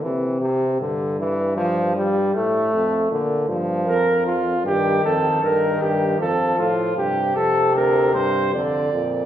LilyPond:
<<
  \new Staff \with { instrumentName = "Flugelhorn" } { \time 4/4 \key bes \major \tempo 4 = 78 r1 | r4 bes'8 f'8 g'8 a'8 bes'8 g'8 | a'8 f'8 g'8 a'8 bes'8 c''8 d''4 | }
  \new Staff \with { instrumentName = "Trombone" } { \clef bass \time 4/4 \key bes \major e8 c8 d8 e8 f8 g8 a4 | d8 f4 r8 ees4 ees4 | f4 c2 d8 bes,8 | }
  \new Staff \with { instrumentName = "Euphonium" } { \clef bass \time 4/4 \key bes \major c4 g,2 a,8 f,8 | bes,8 g,8 f,4 g,8 f,8 g,8 g,8 | f,8 a,8 g,8 f,8 d,8 g,8 f,8 f,8 | }
>>